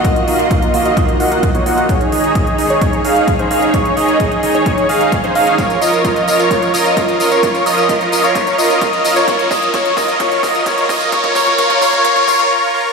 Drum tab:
HH |xxoxxxoxxxoxxxox|xxoxxxoxxxoxxxox|xxoxxxoxxxoxxxox|xxoxxxoxxxoxxxox|
TB |----------------|----------------|----------------|xxxxxxxxxxxxxxxx|
BD |o---o---o---o---|o---o---o---o---|o---o---o---o---|o---o---o---o---|

HH |xxoxxxoxxxoxxxox|xxoxxxoxxxoxxxox|xxoxxxoxxxox----|
TB |xxxxxxxxxxxxxxxx|xxxxxxxxxxxxxxxx|xxxxxxxxxxxx----|
BD |o---o---o---o---|o-o-o-o-o-o-o-o-|oooooooooooo----|